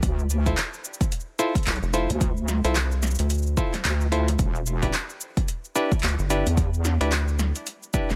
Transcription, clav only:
0, 0, Header, 1, 2, 480
1, 0, Start_track
1, 0, Tempo, 545455
1, 25, Time_signature, 4, 2, 24, 8
1, 7178, End_track
2, 0, Start_track
2, 0, Title_t, "Clav"
2, 0, Program_c, 0, 7
2, 408, Note_on_c, 0, 64, 87
2, 408, Note_on_c, 0, 65, 79
2, 408, Note_on_c, 0, 69, 80
2, 408, Note_on_c, 0, 72, 93
2, 511, Note_off_c, 0, 65, 0
2, 511, Note_off_c, 0, 72, 0
2, 512, Note_off_c, 0, 64, 0
2, 512, Note_off_c, 0, 69, 0
2, 1223, Note_on_c, 0, 64, 98
2, 1223, Note_on_c, 0, 69, 87
2, 1224, Note_on_c, 0, 65, 92
2, 1224, Note_on_c, 0, 72, 104
2, 1371, Note_off_c, 0, 64, 0
2, 1371, Note_off_c, 0, 65, 0
2, 1371, Note_off_c, 0, 69, 0
2, 1371, Note_off_c, 0, 72, 0
2, 1703, Note_on_c, 0, 69, 78
2, 1704, Note_on_c, 0, 64, 88
2, 1704, Note_on_c, 0, 65, 80
2, 1704, Note_on_c, 0, 72, 97
2, 1851, Note_off_c, 0, 64, 0
2, 1851, Note_off_c, 0, 65, 0
2, 1851, Note_off_c, 0, 69, 0
2, 1851, Note_off_c, 0, 72, 0
2, 2327, Note_on_c, 0, 72, 89
2, 2328, Note_on_c, 0, 64, 88
2, 2328, Note_on_c, 0, 65, 79
2, 2328, Note_on_c, 0, 69, 78
2, 2431, Note_off_c, 0, 65, 0
2, 2431, Note_off_c, 0, 72, 0
2, 2432, Note_off_c, 0, 64, 0
2, 2432, Note_off_c, 0, 69, 0
2, 3143, Note_on_c, 0, 69, 89
2, 3144, Note_on_c, 0, 64, 95
2, 3144, Note_on_c, 0, 65, 93
2, 3144, Note_on_c, 0, 72, 103
2, 3291, Note_off_c, 0, 64, 0
2, 3291, Note_off_c, 0, 65, 0
2, 3291, Note_off_c, 0, 69, 0
2, 3291, Note_off_c, 0, 72, 0
2, 3624, Note_on_c, 0, 64, 86
2, 3625, Note_on_c, 0, 65, 78
2, 3625, Note_on_c, 0, 69, 80
2, 3625, Note_on_c, 0, 72, 98
2, 3771, Note_off_c, 0, 64, 0
2, 3772, Note_off_c, 0, 65, 0
2, 3772, Note_off_c, 0, 69, 0
2, 3772, Note_off_c, 0, 72, 0
2, 4245, Note_on_c, 0, 67, 82
2, 4246, Note_on_c, 0, 62, 89
2, 4246, Note_on_c, 0, 64, 80
2, 4246, Note_on_c, 0, 71, 95
2, 4350, Note_off_c, 0, 67, 0
2, 4351, Note_off_c, 0, 62, 0
2, 4351, Note_off_c, 0, 64, 0
2, 4351, Note_off_c, 0, 71, 0
2, 5064, Note_on_c, 0, 62, 100
2, 5064, Note_on_c, 0, 64, 87
2, 5065, Note_on_c, 0, 67, 83
2, 5065, Note_on_c, 0, 71, 106
2, 5211, Note_off_c, 0, 62, 0
2, 5211, Note_off_c, 0, 64, 0
2, 5211, Note_off_c, 0, 71, 0
2, 5212, Note_off_c, 0, 67, 0
2, 5546, Note_on_c, 0, 62, 88
2, 5546, Note_on_c, 0, 64, 80
2, 5546, Note_on_c, 0, 67, 80
2, 5546, Note_on_c, 0, 71, 96
2, 5692, Note_off_c, 0, 62, 0
2, 5692, Note_off_c, 0, 64, 0
2, 5692, Note_off_c, 0, 67, 0
2, 5692, Note_off_c, 0, 71, 0
2, 6167, Note_on_c, 0, 62, 91
2, 6167, Note_on_c, 0, 64, 81
2, 6167, Note_on_c, 0, 67, 76
2, 6167, Note_on_c, 0, 71, 97
2, 6271, Note_off_c, 0, 62, 0
2, 6271, Note_off_c, 0, 64, 0
2, 6271, Note_off_c, 0, 67, 0
2, 6271, Note_off_c, 0, 71, 0
2, 6985, Note_on_c, 0, 62, 101
2, 6985, Note_on_c, 0, 67, 90
2, 6985, Note_on_c, 0, 71, 109
2, 6986, Note_on_c, 0, 64, 95
2, 7132, Note_off_c, 0, 62, 0
2, 7132, Note_off_c, 0, 64, 0
2, 7132, Note_off_c, 0, 67, 0
2, 7132, Note_off_c, 0, 71, 0
2, 7178, End_track
0, 0, End_of_file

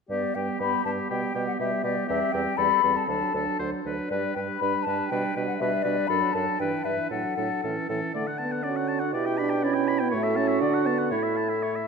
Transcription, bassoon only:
0, 0, Header, 1, 2, 480
1, 0, Start_track
1, 0, Key_signature, 1, "major"
1, 0, Tempo, 495050
1, 95, Time_signature, 2, 2, 24, 8
1, 2493, Tempo, 502934
1, 5853, Key_signature, 2, "major"
1, 6333, Tempo, 517241
1, 7773, Tempo, 497925
1, 11367, End_track
2, 0, Start_track
2, 0, Title_t, "Bassoon"
2, 0, Program_c, 0, 70
2, 94, Note_on_c, 0, 43, 36
2, 204, Note_off_c, 0, 43, 0
2, 341, Note_on_c, 0, 43, 32
2, 450, Note_off_c, 0, 43, 0
2, 582, Note_on_c, 0, 43, 34
2, 691, Note_off_c, 0, 43, 0
2, 828, Note_on_c, 0, 43, 35
2, 935, Note_off_c, 0, 43, 0
2, 1072, Note_on_c, 0, 47, 36
2, 1178, Note_off_c, 0, 47, 0
2, 1312, Note_on_c, 0, 47, 38
2, 1418, Note_off_c, 0, 47, 0
2, 1549, Note_on_c, 0, 47, 42
2, 1654, Note_off_c, 0, 47, 0
2, 1778, Note_on_c, 0, 47, 39
2, 1885, Note_off_c, 0, 47, 0
2, 2032, Note_on_c, 0, 40, 47
2, 2135, Note_off_c, 0, 40, 0
2, 2270, Note_on_c, 0, 40, 47
2, 2373, Note_off_c, 0, 40, 0
2, 2503, Note_on_c, 0, 40, 48
2, 2607, Note_off_c, 0, 40, 0
2, 2745, Note_on_c, 0, 40, 39
2, 2851, Note_off_c, 0, 40, 0
2, 2978, Note_on_c, 0, 38, 37
2, 3087, Note_off_c, 0, 38, 0
2, 3226, Note_on_c, 0, 38, 33
2, 3335, Note_off_c, 0, 38, 0
2, 3472, Note_on_c, 0, 38, 36
2, 3581, Note_off_c, 0, 38, 0
2, 3717, Note_on_c, 0, 38, 30
2, 3825, Note_off_c, 0, 38, 0
2, 3957, Note_on_c, 0, 43, 38
2, 4065, Note_off_c, 0, 43, 0
2, 4201, Note_on_c, 0, 43, 40
2, 4308, Note_off_c, 0, 43, 0
2, 4443, Note_on_c, 0, 43, 38
2, 4549, Note_off_c, 0, 43, 0
2, 4684, Note_on_c, 0, 43, 37
2, 4789, Note_off_c, 0, 43, 0
2, 4922, Note_on_c, 0, 47, 45
2, 5026, Note_off_c, 0, 47, 0
2, 5159, Note_on_c, 0, 47, 42
2, 5262, Note_off_c, 0, 47, 0
2, 5392, Note_on_c, 0, 47, 50
2, 5496, Note_off_c, 0, 47, 0
2, 5620, Note_on_c, 0, 47, 39
2, 5725, Note_off_c, 0, 47, 0
2, 5857, Note_on_c, 0, 42, 43
2, 5964, Note_off_c, 0, 42, 0
2, 6093, Note_on_c, 0, 42, 43
2, 6201, Note_off_c, 0, 42, 0
2, 6336, Note_on_c, 0, 43, 44
2, 6442, Note_off_c, 0, 43, 0
2, 6567, Note_on_c, 0, 43, 36
2, 6675, Note_off_c, 0, 43, 0
2, 6806, Note_on_c, 0, 45, 39
2, 6916, Note_off_c, 0, 45, 0
2, 7056, Note_on_c, 0, 45, 37
2, 7163, Note_off_c, 0, 45, 0
2, 7301, Note_on_c, 0, 45, 36
2, 7408, Note_off_c, 0, 45, 0
2, 7537, Note_on_c, 0, 45, 33
2, 7643, Note_off_c, 0, 45, 0
2, 7768, Note_on_c, 0, 50, 32
2, 8728, Note_on_c, 0, 47, 39
2, 8743, Note_off_c, 0, 50, 0
2, 9685, Note_off_c, 0, 47, 0
2, 9694, Note_on_c, 0, 45, 47
2, 10159, Note_on_c, 0, 50, 47
2, 10174, Note_off_c, 0, 45, 0
2, 10641, Note_on_c, 0, 45, 37
2, 10656, Note_off_c, 0, 50, 0
2, 11367, Note_off_c, 0, 45, 0
2, 11367, End_track
0, 0, End_of_file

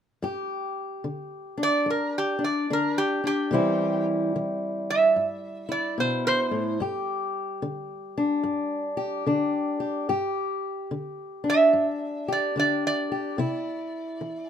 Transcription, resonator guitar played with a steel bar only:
0, 0, Header, 1, 2, 480
1, 0, Start_track
1, 0, Tempo, 823045
1, 134, Time_signature, 4, 2, 24, 8
1, 8454, End_track
2, 0, Start_track
2, 0, Title_t, "Resonator guitar played with a steel bar"
2, 0, Program_c, 0, 25
2, 951, Note_on_c, 0, 74, 99
2, 1097, Note_off_c, 0, 74, 0
2, 1110, Note_on_c, 0, 70, 68
2, 1257, Note_off_c, 0, 70, 0
2, 1272, Note_on_c, 0, 67, 74
2, 1418, Note_off_c, 0, 67, 0
2, 1425, Note_on_c, 0, 74, 76
2, 1574, Note_off_c, 0, 74, 0
2, 1593, Note_on_c, 0, 70, 81
2, 1738, Note_off_c, 0, 70, 0
2, 1738, Note_on_c, 0, 67, 90
2, 1890, Note_off_c, 0, 67, 0
2, 1906, Note_on_c, 0, 67, 86
2, 2365, Note_off_c, 0, 67, 0
2, 2860, Note_on_c, 0, 76, 84
2, 3322, Note_off_c, 0, 76, 0
2, 3334, Note_on_c, 0, 74, 73
2, 3488, Note_off_c, 0, 74, 0
2, 3500, Note_on_c, 0, 72, 89
2, 3649, Note_off_c, 0, 72, 0
2, 3656, Note_on_c, 0, 72, 98
2, 3964, Note_off_c, 0, 72, 0
2, 6705, Note_on_c, 0, 76, 95
2, 7165, Note_off_c, 0, 76, 0
2, 7188, Note_on_c, 0, 74, 73
2, 7337, Note_off_c, 0, 74, 0
2, 7345, Note_on_c, 0, 74, 82
2, 7495, Note_off_c, 0, 74, 0
2, 7505, Note_on_c, 0, 74, 96
2, 8454, Note_off_c, 0, 74, 0
2, 8454, End_track
0, 0, End_of_file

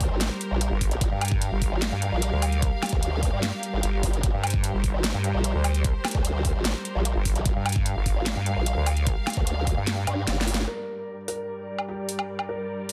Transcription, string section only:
0, 0, Header, 1, 2, 480
1, 0, Start_track
1, 0, Tempo, 402685
1, 1207, Time_signature, 4, 2, 24, 8
1, 15402, End_track
2, 0, Start_track
2, 0, Title_t, "String section"
2, 0, Program_c, 0, 48
2, 0, Note_on_c, 0, 55, 83
2, 0, Note_on_c, 0, 67, 77
2, 0, Note_on_c, 0, 70, 75
2, 0, Note_on_c, 0, 72, 92
2, 1193, Note_off_c, 0, 72, 0
2, 1208, Note_on_c, 0, 77, 90
2, 5033, Note_off_c, 0, 77, 0
2, 5046, Note_on_c, 0, 72, 93
2, 8872, Note_off_c, 0, 72, 0
2, 8886, Note_on_c, 0, 77, 92
2, 12679, Note_off_c, 0, 55, 0
2, 12679, Note_off_c, 0, 67, 0
2, 12679, Note_off_c, 0, 70, 0
2, 12712, Note_off_c, 0, 77, 0
2, 12726, Note_on_c, 0, 43, 75
2, 12726, Note_on_c, 0, 55, 73
2, 12726, Note_on_c, 0, 70, 69
2, 12727, Note_on_c, 0, 74, 84
2, 15402, Note_off_c, 0, 43, 0
2, 15402, Note_off_c, 0, 55, 0
2, 15402, Note_off_c, 0, 70, 0
2, 15402, Note_off_c, 0, 74, 0
2, 15402, End_track
0, 0, End_of_file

